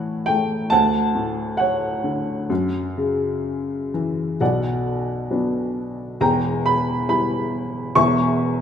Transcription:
0.00 0.67 A2 medium
0.00 0.68 E3 medium
0.00 0.67 C#5 medium
0.00 0.31 F#5 medium
0.26 0.70 A3 medium
0.26 0.72 G5 medium
0.70 2.46 D2 medium
0.70 1.56 F#5 medium
0.70 1.61 A5 medium
1.15 2.46 A2 medium
1.57 3.91 C#5 medium
1.57 3.90 F#5 medium
2.04 2.49 D3 medium
2.50 4.37 F#2 medium
2.98 4.37 C#3 medium
3.94 4.39 E3 medium
4.40 6.17 B1 medium
4.40 6.17 B2 medium
4.40 6.17 D5 soft
4.40 6.26 F#5 medium
5.30 6.18 F#3 soft
5.30 6.18 B3 soft
5.30 6.18 D4 soft
6.21 7.92 E1 medium
6.21 7.92 E2 medium
6.21 7.92 G5 medium
6.21 6.67 A#5 medium
6.66 7.08 B5 medium
7.08 7.93 G3 soft
7.08 7.93 B3 soft
7.08 7.94 E4 soft
7.08 7.92 B5 medium
7.95 8.61 E1 medium
7.95 8.61 E2 medium
7.95 8.61 E5 medium
7.95 8.61 C#6 medium

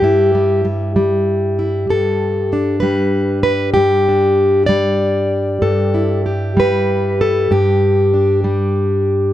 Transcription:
0.00 1.89 G2 medium
0.00 0.34 G3 medium
0.00 1.58 E4 medium
0.00 0.65 G4 medium
0.35 0.64 G3 soft
0.65 0.96 G3 soft
0.96 2.82 G3 medium
1.59 1.86 E4 soft
1.89 3.76 G2 medium
1.89 2.80 A4 medium
2.53 3.74 D4 soft
2.80 4.69 G3 medium
2.80 3.42 B4 medium
3.43 3.73 B4 medium
3.74 5.61 G2 medium
3.74 4.66 G4 medium
4.08 5.62 D4 soft
4.66 6.56 G3 medium
4.66 5.62 D5 medium
5.62 7.51 G2 medium
5.62 6.25 A4 medium
5.94 7.47 E4 soft
6.26 7.21 G4 soft
6.57 8.43 G3 medium
6.57 7.51 B4 medium
7.21 7.52 A4 medium
7.51 9.33 G2 medium
7.51 9.33 G4 medium
8.14 9.33 D4 soft
8.44 9.33 G3 medium

